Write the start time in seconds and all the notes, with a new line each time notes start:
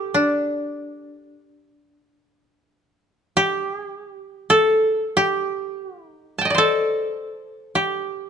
Already playing: G4 A4 C5
0.14 D4
3.37 G4
4.50 A4
5.17 G4
6.10 D#4
6.38 G5 A5
6.45 D#5
6.50 D5
6.55 A4 C5
7.75 G4